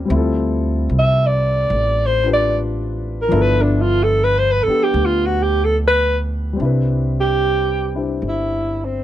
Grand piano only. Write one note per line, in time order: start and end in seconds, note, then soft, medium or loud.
0.00 0.05 G3 medium
0.00 0.08 C4 medium
0.00 0.10 C#4 soft
0.00 0.11 F4 soft
0.00 0.12 A#4 medium
0.05 3.29 G3 soft
0.05 3.30 C4 soft
0.11 3.31 E4 soft
0.11 2.23 F4 soft
0.16 3.31 A4 medium
2.24 3.29 D4 soft
2.24 3.31 F4 soft
2.24 3.32 G4 soft
2.24 3.32 B4 medium
3.28 6.58 F3 medium
3.28 4.65 B3 medium
3.28 4.66 D4 medium
3.28 6.60 E4 medium
3.33 6.60 A4 medium
4.66 6.59 B3 soft
4.66 6.57 D4 soft
4.66 6.60 G4 medium
6.53 9.04 G3 soft
6.53 9.04 C4 soft
6.59 7.94 D4 soft
6.59 7.94 E4 soft
6.65 9.04 B4 soft
7.95 9.04 D4 soft
7.95 9.04 E4 soft
7.95 9.04 G4 soft
7.95 9.04 C5 soft